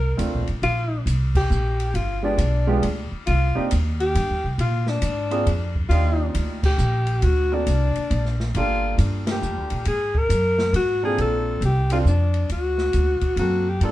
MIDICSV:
0, 0, Header, 1, 6, 480
1, 0, Start_track
1, 0, Key_signature, -2, "major"
1, 0, Tempo, 439883
1, 684, Time_signature, 3, 2, 24, 8
1, 15186, End_track
2, 0, Start_track
2, 0, Title_t, "Alto saxophone"
2, 0, Program_c, 0, 65
2, 0, Note_on_c, 0, 70, 107
2, 513, Note_off_c, 0, 70, 0
2, 690, Note_on_c, 0, 65, 96
2, 1135, Note_off_c, 0, 65, 0
2, 1491, Note_on_c, 0, 67, 103
2, 2130, Note_on_c, 0, 65, 101
2, 2146, Note_off_c, 0, 67, 0
2, 2443, Note_off_c, 0, 65, 0
2, 2452, Note_on_c, 0, 62, 87
2, 3365, Note_off_c, 0, 62, 0
2, 3561, Note_on_c, 0, 65, 115
2, 4013, Note_off_c, 0, 65, 0
2, 4369, Note_on_c, 0, 67, 112
2, 4971, Note_off_c, 0, 67, 0
2, 5024, Note_on_c, 0, 65, 95
2, 5338, Note_on_c, 0, 62, 87
2, 5354, Note_off_c, 0, 65, 0
2, 6293, Note_off_c, 0, 62, 0
2, 6427, Note_on_c, 0, 65, 102
2, 6886, Note_off_c, 0, 65, 0
2, 7263, Note_on_c, 0, 67, 96
2, 7894, Note_on_c, 0, 66, 91
2, 7910, Note_off_c, 0, 67, 0
2, 8229, Note_on_c, 0, 62, 94
2, 8246, Note_off_c, 0, 66, 0
2, 9177, Note_off_c, 0, 62, 0
2, 9346, Note_on_c, 0, 65, 109
2, 9786, Note_off_c, 0, 65, 0
2, 10164, Note_on_c, 0, 67, 86
2, 10747, Note_off_c, 0, 67, 0
2, 10778, Note_on_c, 0, 68, 94
2, 11104, Note_on_c, 0, 70, 97
2, 11120, Note_off_c, 0, 68, 0
2, 11733, Note_off_c, 0, 70, 0
2, 11740, Note_on_c, 0, 66, 97
2, 12026, Note_off_c, 0, 66, 0
2, 12057, Note_on_c, 0, 68, 98
2, 12205, Note_off_c, 0, 68, 0
2, 12236, Note_on_c, 0, 69, 98
2, 12669, Note_off_c, 0, 69, 0
2, 12718, Note_on_c, 0, 67, 90
2, 12995, Note_off_c, 0, 67, 0
2, 13013, Note_on_c, 0, 65, 75
2, 13085, Note_off_c, 0, 65, 0
2, 13184, Note_on_c, 0, 62, 85
2, 13622, Note_off_c, 0, 62, 0
2, 13663, Note_on_c, 0, 66, 91
2, 14570, Note_off_c, 0, 66, 0
2, 14609, Note_on_c, 0, 66, 91
2, 14938, Note_on_c, 0, 67, 91
2, 14955, Note_off_c, 0, 66, 0
2, 15095, Note_off_c, 0, 67, 0
2, 15113, Note_on_c, 0, 69, 87
2, 15186, Note_off_c, 0, 69, 0
2, 15186, End_track
3, 0, Start_track
3, 0, Title_t, "Grand piano"
3, 0, Program_c, 1, 0
3, 187, Note_on_c, 1, 57, 61
3, 190, Note_on_c, 1, 60, 50
3, 191, Note_on_c, 1, 62, 51
3, 194, Note_on_c, 1, 65, 68
3, 478, Note_off_c, 1, 57, 0
3, 479, Note_off_c, 1, 60, 0
3, 479, Note_off_c, 1, 62, 0
3, 481, Note_off_c, 1, 65, 0
3, 2428, Note_on_c, 1, 56, 59
3, 2434, Note_on_c, 1, 59, 53
3, 2435, Note_on_c, 1, 62, 55
3, 2441, Note_on_c, 1, 67, 64
3, 2443, Note_on_c, 1, 65, 53
3, 2586, Note_off_c, 1, 56, 0
3, 2589, Note_off_c, 1, 59, 0
3, 2589, Note_off_c, 1, 62, 0
3, 2592, Note_off_c, 1, 67, 0
3, 2593, Note_off_c, 1, 65, 0
3, 2915, Note_on_c, 1, 62, 64
3, 2916, Note_on_c, 1, 56, 85
3, 2920, Note_on_c, 1, 65, 73
3, 2921, Note_on_c, 1, 59, 64
3, 2923, Note_on_c, 1, 67, 84
3, 3069, Note_off_c, 1, 62, 0
3, 3070, Note_off_c, 1, 56, 0
3, 3072, Note_off_c, 1, 59, 0
3, 3072, Note_off_c, 1, 65, 0
3, 3073, Note_off_c, 1, 67, 0
3, 3873, Note_on_c, 1, 58, 71
3, 3877, Note_on_c, 1, 63, 57
3, 3878, Note_on_c, 1, 60, 65
3, 3878, Note_on_c, 1, 62, 59
3, 3878, Note_on_c, 1, 67, 76
3, 4029, Note_off_c, 1, 58, 0
3, 4031, Note_off_c, 1, 63, 0
3, 4032, Note_off_c, 1, 60, 0
3, 4032, Note_off_c, 1, 62, 0
3, 4032, Note_off_c, 1, 67, 0
3, 5790, Note_on_c, 1, 58, 65
3, 5796, Note_on_c, 1, 65, 64
3, 5800, Note_on_c, 1, 60, 60
3, 5803, Note_on_c, 1, 62, 62
3, 5804, Note_on_c, 1, 68, 74
3, 5948, Note_off_c, 1, 58, 0
3, 5951, Note_off_c, 1, 65, 0
3, 5953, Note_off_c, 1, 60, 0
3, 5955, Note_off_c, 1, 62, 0
3, 5956, Note_off_c, 1, 68, 0
3, 6449, Note_on_c, 1, 62, 57
3, 6449, Note_on_c, 1, 65, 58
3, 6452, Note_on_c, 1, 58, 58
3, 6453, Note_on_c, 1, 63, 57
3, 6458, Note_on_c, 1, 67, 69
3, 7182, Note_off_c, 1, 62, 0
3, 7182, Note_off_c, 1, 65, 0
3, 7183, Note_off_c, 1, 58, 0
3, 7184, Note_off_c, 1, 63, 0
3, 7187, Note_off_c, 1, 67, 0
3, 8203, Note_on_c, 1, 60, 49
3, 8203, Note_on_c, 1, 62, 53
3, 8205, Note_on_c, 1, 58, 54
3, 8212, Note_on_c, 1, 66, 50
3, 8218, Note_on_c, 1, 69, 59
3, 8355, Note_off_c, 1, 60, 0
3, 8355, Note_off_c, 1, 62, 0
3, 8356, Note_off_c, 1, 58, 0
3, 8360, Note_off_c, 1, 66, 0
3, 8363, Note_off_c, 1, 69, 0
3, 9338, Note_on_c, 1, 58, 65
3, 9344, Note_on_c, 1, 65, 58
3, 9348, Note_on_c, 1, 62, 53
3, 9352, Note_on_c, 1, 67, 54
3, 9358, Note_on_c, 1, 69, 69
3, 10674, Note_off_c, 1, 58, 0
3, 10677, Note_off_c, 1, 65, 0
3, 10678, Note_off_c, 1, 62, 0
3, 10681, Note_off_c, 1, 67, 0
3, 10684, Note_off_c, 1, 69, 0
3, 12032, Note_on_c, 1, 58, 63
3, 12034, Note_on_c, 1, 62, 55
3, 12041, Note_on_c, 1, 65, 60
3, 12041, Note_on_c, 1, 69, 73
3, 12042, Note_on_c, 1, 60, 65
3, 12650, Note_off_c, 1, 58, 0
3, 12651, Note_off_c, 1, 62, 0
3, 12654, Note_off_c, 1, 65, 0
3, 12654, Note_off_c, 1, 69, 0
3, 12655, Note_off_c, 1, 60, 0
3, 13003, Note_on_c, 1, 60, 70
3, 13007, Note_on_c, 1, 62, 57
3, 13007, Note_on_c, 1, 69, 70
3, 13009, Note_on_c, 1, 65, 65
3, 13152, Note_off_c, 1, 60, 0
3, 13154, Note_off_c, 1, 62, 0
3, 13154, Note_off_c, 1, 69, 0
3, 13155, Note_off_c, 1, 65, 0
3, 14611, Note_on_c, 1, 58, 56
3, 14613, Note_on_c, 1, 60, 51
3, 14615, Note_on_c, 1, 66, 45
3, 14622, Note_on_c, 1, 69, 56
3, 14890, Note_off_c, 1, 58, 0
3, 14891, Note_off_c, 1, 60, 0
3, 14892, Note_off_c, 1, 66, 0
3, 14896, Note_off_c, 1, 69, 0
3, 15089, Note_on_c, 1, 58, 69
3, 15095, Note_on_c, 1, 62, 59
3, 15096, Note_on_c, 1, 69, 79
3, 15097, Note_on_c, 1, 65, 64
3, 15186, Note_off_c, 1, 58, 0
3, 15186, Note_off_c, 1, 62, 0
3, 15186, Note_off_c, 1, 65, 0
3, 15186, Note_off_c, 1, 69, 0
3, 15186, End_track
4, 0, Start_track
4, 0, Title_t, "Upright bass"
4, 0, Program_c, 2, 32
4, 0, Note_on_c, 2, 36, 74
4, 186, Note_off_c, 2, 36, 0
4, 201, Note_on_c, 2, 38, 81
4, 365, Note_off_c, 2, 38, 0
4, 365, Note_on_c, 2, 34, 51
4, 522, Note_off_c, 2, 34, 0
4, 528, Note_on_c, 2, 33, 62
4, 671, Note_off_c, 2, 33, 0
4, 678, Note_on_c, 2, 34, 74
4, 1148, Note_off_c, 2, 34, 0
4, 1154, Note_on_c, 2, 36, 83
4, 1627, Note_off_c, 2, 36, 0
4, 1639, Note_on_c, 2, 34, 83
4, 2110, Note_off_c, 2, 34, 0
4, 2117, Note_on_c, 2, 31, 80
4, 2589, Note_off_c, 2, 31, 0
4, 2594, Note_on_c, 2, 35, 84
4, 3068, Note_off_c, 2, 35, 0
4, 3081, Note_on_c, 2, 38, 90
4, 3377, Note_off_c, 2, 38, 0
4, 3572, Note_on_c, 2, 36, 83
4, 3863, Note_off_c, 2, 36, 0
4, 4060, Note_on_c, 2, 39, 94
4, 4522, Note_off_c, 2, 39, 0
4, 4528, Note_on_c, 2, 43, 88
4, 4687, Note_on_c, 2, 39, 50
4, 4703, Note_off_c, 2, 43, 0
4, 4835, Note_off_c, 2, 39, 0
4, 4841, Note_on_c, 2, 36, 66
4, 4992, Note_off_c, 2, 36, 0
4, 4998, Note_on_c, 2, 46, 82
4, 5471, Note_off_c, 2, 46, 0
4, 5478, Note_on_c, 2, 44, 89
4, 5951, Note_off_c, 2, 44, 0
4, 5960, Note_on_c, 2, 41, 84
4, 6422, Note_off_c, 2, 41, 0
4, 6428, Note_on_c, 2, 39, 78
4, 6907, Note_off_c, 2, 39, 0
4, 6925, Note_on_c, 2, 38, 88
4, 7395, Note_off_c, 2, 38, 0
4, 7400, Note_on_c, 2, 34, 82
4, 7872, Note_off_c, 2, 34, 0
4, 7881, Note_on_c, 2, 38, 83
4, 8352, Note_off_c, 2, 38, 0
4, 8365, Note_on_c, 2, 36, 83
4, 8660, Note_off_c, 2, 36, 0
4, 8843, Note_on_c, 2, 34, 91
4, 9313, Note_off_c, 2, 34, 0
4, 9322, Note_on_c, 2, 31, 87
4, 9792, Note_off_c, 2, 31, 0
4, 9799, Note_on_c, 2, 43, 96
4, 10271, Note_off_c, 2, 43, 0
4, 10281, Note_on_c, 2, 41, 88
4, 10446, Note_off_c, 2, 41, 0
4, 10446, Note_on_c, 2, 38, 55
4, 10590, Note_off_c, 2, 38, 0
4, 10597, Note_on_c, 2, 34, 67
4, 10752, Note_off_c, 2, 34, 0
4, 10759, Note_on_c, 2, 44, 82
4, 11224, Note_off_c, 2, 44, 0
4, 11231, Note_on_c, 2, 42, 85
4, 11701, Note_off_c, 2, 42, 0
4, 11707, Note_on_c, 2, 44, 89
4, 12183, Note_off_c, 2, 44, 0
4, 12199, Note_on_c, 2, 34, 70
4, 12662, Note_off_c, 2, 34, 0
4, 12668, Note_on_c, 2, 36, 80
4, 13143, Note_off_c, 2, 36, 0
4, 13150, Note_on_c, 2, 41, 83
4, 13624, Note_off_c, 2, 41, 0
4, 13635, Note_on_c, 2, 38, 73
4, 14106, Note_off_c, 2, 38, 0
4, 14116, Note_on_c, 2, 38, 81
4, 14412, Note_off_c, 2, 38, 0
4, 14582, Note_on_c, 2, 42, 86
4, 15059, Note_off_c, 2, 42, 0
4, 15065, Note_on_c, 2, 43, 79
4, 15186, Note_off_c, 2, 43, 0
4, 15186, End_track
5, 0, Start_track
5, 0, Title_t, "Muted upright bass strokes"
5, 3398, Note_on_c, 9, 29, 44
5, 3507, Note_off_c, 9, 29, 0
5, 3893, Note_on_c, 9, 29, 41
5, 4002, Note_off_c, 9, 29, 0
5, 8694, Note_on_c, 9, 29, 38
5, 8803, Note_off_c, 9, 29, 0
5, 14418, Note_on_c, 9, 29, 36
5, 14527, Note_off_c, 9, 29, 0
5, 15186, End_track
6, 0, Start_track
6, 0, Title_t, "Drums"
6, 205, Note_on_c, 9, 44, 54
6, 205, Note_on_c, 9, 51, 62
6, 315, Note_off_c, 9, 44, 0
6, 315, Note_off_c, 9, 51, 0
6, 518, Note_on_c, 9, 51, 42
6, 627, Note_off_c, 9, 51, 0
6, 687, Note_on_c, 9, 51, 62
6, 796, Note_off_c, 9, 51, 0
6, 1165, Note_on_c, 9, 44, 62
6, 1165, Note_on_c, 9, 51, 69
6, 1275, Note_off_c, 9, 44, 0
6, 1275, Note_off_c, 9, 51, 0
6, 1473, Note_on_c, 9, 36, 82
6, 1476, Note_on_c, 9, 49, 76
6, 1582, Note_off_c, 9, 36, 0
6, 1585, Note_off_c, 9, 49, 0
6, 1647, Note_on_c, 9, 44, 49
6, 1757, Note_off_c, 9, 44, 0
6, 1961, Note_on_c, 9, 51, 49
6, 2070, Note_off_c, 9, 51, 0
6, 2125, Note_on_c, 9, 51, 57
6, 2234, Note_off_c, 9, 51, 0
6, 2602, Note_on_c, 9, 44, 57
6, 2602, Note_on_c, 9, 51, 68
6, 2711, Note_off_c, 9, 44, 0
6, 2711, Note_off_c, 9, 51, 0
6, 3086, Note_on_c, 9, 51, 69
6, 3196, Note_off_c, 9, 51, 0
6, 3565, Note_on_c, 9, 51, 59
6, 3674, Note_off_c, 9, 51, 0
6, 4046, Note_on_c, 9, 44, 60
6, 4046, Note_on_c, 9, 51, 75
6, 4155, Note_off_c, 9, 44, 0
6, 4155, Note_off_c, 9, 51, 0
6, 4367, Note_on_c, 9, 51, 46
6, 4476, Note_off_c, 9, 51, 0
6, 4532, Note_on_c, 9, 44, 53
6, 4532, Note_on_c, 9, 51, 71
6, 4641, Note_off_c, 9, 44, 0
6, 4641, Note_off_c, 9, 51, 0
6, 5008, Note_on_c, 9, 51, 60
6, 5117, Note_off_c, 9, 51, 0
6, 5309, Note_on_c, 9, 38, 49
6, 5418, Note_off_c, 9, 38, 0
6, 5474, Note_on_c, 9, 44, 61
6, 5474, Note_on_c, 9, 51, 69
6, 5583, Note_off_c, 9, 44, 0
6, 5583, Note_off_c, 9, 51, 0
6, 5797, Note_on_c, 9, 51, 46
6, 5906, Note_off_c, 9, 51, 0
6, 5965, Note_on_c, 9, 51, 66
6, 6074, Note_off_c, 9, 51, 0
6, 6278, Note_on_c, 9, 36, 51
6, 6387, Note_off_c, 9, 36, 0
6, 6446, Note_on_c, 9, 51, 61
6, 6556, Note_off_c, 9, 51, 0
6, 6924, Note_on_c, 9, 44, 60
6, 6924, Note_on_c, 9, 51, 71
6, 7033, Note_off_c, 9, 44, 0
6, 7033, Note_off_c, 9, 51, 0
6, 7237, Note_on_c, 9, 36, 85
6, 7240, Note_on_c, 9, 49, 79
6, 7347, Note_off_c, 9, 36, 0
6, 7349, Note_off_c, 9, 49, 0
6, 7401, Note_on_c, 9, 44, 65
6, 7510, Note_off_c, 9, 44, 0
6, 7710, Note_on_c, 9, 51, 46
6, 7819, Note_off_c, 9, 51, 0
6, 7879, Note_on_c, 9, 51, 64
6, 7988, Note_off_c, 9, 51, 0
6, 8364, Note_on_c, 9, 44, 51
6, 8364, Note_on_c, 9, 51, 72
6, 8474, Note_off_c, 9, 44, 0
6, 8474, Note_off_c, 9, 51, 0
6, 8680, Note_on_c, 9, 51, 48
6, 8789, Note_off_c, 9, 51, 0
6, 8847, Note_on_c, 9, 51, 58
6, 8956, Note_off_c, 9, 51, 0
6, 9006, Note_on_c, 9, 38, 29
6, 9115, Note_off_c, 9, 38, 0
6, 9166, Note_on_c, 9, 38, 49
6, 9275, Note_off_c, 9, 38, 0
6, 9325, Note_on_c, 9, 51, 67
6, 9434, Note_off_c, 9, 51, 0
6, 9805, Note_on_c, 9, 44, 64
6, 9805, Note_on_c, 9, 51, 70
6, 9914, Note_off_c, 9, 44, 0
6, 9914, Note_off_c, 9, 51, 0
6, 10114, Note_on_c, 9, 38, 90
6, 10116, Note_on_c, 9, 51, 66
6, 10224, Note_off_c, 9, 38, 0
6, 10225, Note_off_c, 9, 51, 0
6, 10283, Note_on_c, 9, 44, 62
6, 10392, Note_off_c, 9, 44, 0
6, 10586, Note_on_c, 9, 51, 52
6, 10695, Note_off_c, 9, 51, 0
6, 10752, Note_on_c, 9, 51, 64
6, 10861, Note_off_c, 9, 51, 0
6, 11072, Note_on_c, 9, 36, 71
6, 11181, Note_off_c, 9, 36, 0
6, 11239, Note_on_c, 9, 44, 65
6, 11239, Note_on_c, 9, 51, 69
6, 11348, Note_off_c, 9, 44, 0
6, 11348, Note_off_c, 9, 51, 0
6, 11550, Note_on_c, 9, 38, 65
6, 11659, Note_off_c, 9, 38, 0
6, 11719, Note_on_c, 9, 51, 68
6, 11829, Note_off_c, 9, 51, 0
6, 12203, Note_on_c, 9, 51, 59
6, 12312, Note_off_c, 9, 51, 0
6, 12679, Note_on_c, 9, 44, 49
6, 12679, Note_on_c, 9, 51, 57
6, 12788, Note_off_c, 9, 44, 0
6, 12788, Note_off_c, 9, 51, 0
6, 12985, Note_on_c, 9, 51, 65
6, 13094, Note_off_c, 9, 51, 0
6, 13164, Note_on_c, 9, 44, 56
6, 13273, Note_off_c, 9, 44, 0
6, 13463, Note_on_c, 9, 51, 45
6, 13572, Note_off_c, 9, 51, 0
6, 13635, Note_on_c, 9, 51, 57
6, 13744, Note_off_c, 9, 51, 0
6, 13945, Note_on_c, 9, 38, 44
6, 14054, Note_off_c, 9, 38, 0
6, 14110, Note_on_c, 9, 44, 51
6, 14110, Note_on_c, 9, 51, 55
6, 14219, Note_off_c, 9, 44, 0
6, 14219, Note_off_c, 9, 51, 0
6, 14418, Note_on_c, 9, 51, 45
6, 14423, Note_on_c, 9, 36, 55
6, 14527, Note_off_c, 9, 51, 0
6, 14532, Note_off_c, 9, 36, 0
6, 14590, Note_on_c, 9, 51, 56
6, 14699, Note_off_c, 9, 51, 0
6, 15070, Note_on_c, 9, 51, 56
6, 15179, Note_off_c, 9, 51, 0
6, 15186, End_track
0, 0, End_of_file